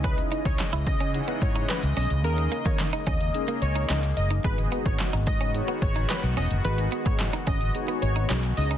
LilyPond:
<<
  \new Staff \with { instrumentName = "Analog synth lead" } { \time 4/4 \key gis \minor \tempo 4 = 109 b'16 r8 cis''16 r8 dis''8 r8 cis''8 b'16 r16 dis''16 r16 | ais'16 r8 cis''16 r8 dis''8 r8 cis''8 r8 dis''16 r16 | b'16 r8 cis''16 r8 dis''8 r8 cis''8 b'16 r16 dis''16 r16 | b'16 r8 cis''16 r8 dis''8 r8 cis''8 r8 dis''16 r16 | }
  \new Staff \with { instrumentName = "Analog polysynth" } { \time 4/4 \key gis \minor <cis' dis' e' gis' dis''>4 r4 <cis' dis' e' gis' fis''>4 r4 | <cis' dis' gis' ais' dis''>4 r4 <cis' dis' gis' ais' dis''>4 r4 | <b dis' fis' gis' dis''>4 r4 <b dis' fis' gis' cis''>4 r4 | <b dis' fis' gis' dis''>4 r4 <b dis' fis' gis' cis''>4 r8 <cis' dis' e' gis' dis''>8 | }
  \new Staff \with { instrumentName = "Clean electric guitar" } { \time 4/4 \key gis \minor cis'16 r16 dis'16 r8 e'16 r16 cis'16 r16 b16 r16 dis'16 r8 cis'16 r16 | r8 ais16 ais16 r16 dis'16 cis'16 r8 ais16 r16 dis'16 cis'16 r8 dis'16 | gis16 r16 b16 r8 dis'16 r16 cis'16 r16 b16 r16 dis'16 r8 cis'16 r16 | r8 b16 b16 r16 dis'16 cis'16 r8 b16 r16 dis'16 cis'16 r8 dis'16 | }
  \new Staff \with { instrumentName = "Analog synth pad" } { \clef bass \time 4/4 \key gis \minor << { <cis dis''>1~ | <cis dis''>1 | <dis fis'>1~ | <dis fis'>2.~ <dis fis'>8 <cis dis''>8 | } \\ { <e gis>1 | ais1 | b1~ | b2.~ b8 e8 | } >> }
  \new Staff \with { instrumentName = "Fretless electric bass" } { \clef bass \time 4/4 \key gis \minor cis,8 r16 cis,16 r16 cis,16 cis8. r16 gis,8 r16 cis,16 b,,16 cis,16 | dis,8 r16 dis8 r16 dis,8 r8 cis,8 cis,8 fis,,8 | gis,,8 r16 gis,,16 r16 gis,,16 gis,8. r16 gis,,8 r16 b,,16 e,,16 fis,,16 | gis,,8 r16 gis,8 r16 gis,,8 r8 gis,,8 b,,8 cis,8 | }
  \new DrumStaff \with { instrumentName = "Drums" } \drummode { \time 4/4 <hh bd>16 hh16 hh16 <hh bd>16 <hc hh sn>16 hh16 <hh bd>16 hh16 hh16 hh16 <hh bd>16 hh16 <hc hh sn>16 hh16 hho16 hh16 | hh16 hh16 hh16 <hh bd>16 <hc hh sn>16 hh16 <hh bd>16 hh16 hh16 hh16 hh16 hh16 <hc hh sn>16 hh16 hh16 hh16 | <hh bd>16 hh16 hh16 <hh bd>16 <hc hh sn>16 hh16 <hh bd>16 hh16 hh16 hh16 <hh bd>16 hh16 <hc hh sn>16 hh16 hho16 hh16 | hh16 hh16 hh16 <hh bd>16 <hc hh sn>16 hh16 <hh bd>16 hh16 hh16 hh16 hh16 hh16 <hc hh sn>16 hh16 hho16 hh16 | }
>>